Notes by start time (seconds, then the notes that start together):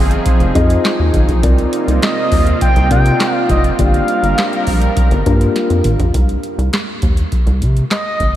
Already playing: G1 F3 C4 D#4 G#4
0.11 closed hi-hat
0.26 kick, closed hi-hat
0.40 F1, closed hi-hat
0.55 F2 C4 D#4 F4 G#4 D#5, kick, closed hi-hat
0.70 closed hi-hat
0.85 snare, clap, closed hi-hat
0.99 D#2
1.14 G#1, kick, closed hi-hat
1.28 A#1, kick, closed hi-hat
1.43 C2 C3 A#3 C4 D#4 F4 A#4 D5, kick, closed hi-hat
1.58 closed hi-hat
1.73 closed hi-hat
1.87 C2, closed hi-hat
2.02 D#5, snare, clap, closed hi-hat
2.32 D#2, kick, open hi-hat
2.47 closed hi-hat
2.61 G5, kick, closed hi-hat
2.76 C2, closed hi-hat
2.90 C3 C4 D4 F4 A#4 D5 G5, kick, closed hi-hat
2.97 D#4
3.06 closed hi-hat
3.20 snare, clap, closed hi-hat
3.34 F5
3.49 F1 D#5, kick, closed hi-hat
3.64 closed hi-hat
3.78 G1 G3 A#3 D4 F4 G4 A#4 D5 F5, kick, closed hi-hat
3.94 closed hi-hat
4.08 closed hi-hat
4.23 G1, closed hi-hat
4.38 snare, clap, closed hi-hat
4.53 closed hi-hat
4.67 A#1, kick, open hi-hat
4.82 closed hi-hat
4.97 kick, closed hi-hat
5.11 G1, closed hi-hat
5.26 G2 A#3 D4 F4 G4 A#4, kick, closed hi-hat
5.41 closed hi-hat
5.56 snare, closed hi-hat
5.70 F2, closed hi-hat
5.84 G#1, closed hi-hat, mid tom
5.99 A#1, closed hi-hat, floor tom
6.14 C2, kick, closed hi-hat
6.29 closed hi-hat
6.43 closed hi-hat
6.58 C2, closed hi-hat
6.73 snare, clap, closed hi-hat
7.02 D#2, kick, closed hi-hat
7.17 closed hi-hat
7.32 kick, closed hi-hat
7.47 C2, closed hi-hat
7.62 C3, kick, closed hi-hat
7.77 closed hi-hat
7.91 D#5, snare, clap, closed hi-hat
8.20 G1, kick, closed hi-hat